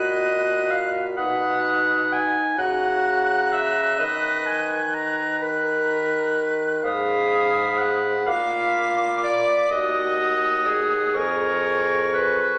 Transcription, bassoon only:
0.00 1.20 A#2 medium
1.19 2.32 B2 medium
2.58 3.97 C#3 medium
3.99 6.80 D#3 medium
6.84 8.23 G#2 loud
8.27 9.53 A#2 medium
9.70 11.16 D#2 medium
11.14 12.59 F2 medium

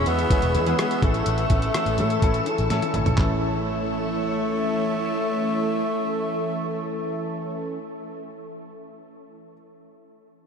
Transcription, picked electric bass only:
0.07 0.24 E2 medium
0.43 0.56 E1 medium
0.55 0.73 E2 medium
1.03 1.20 A1 medium
1.27 1.44 A1 loud
1.50 1.68 A1 medium
1.86 2.00 A1 medium
1.98 2.16 A2 medium
2.22 2.40 A2 medium
2.59 2.68 A1 medium
2.70 2.79 A2 medium
2.95 3.03 A1 medium
3.07 3.15 A#1 medium
3.18 8.05 A1 medium

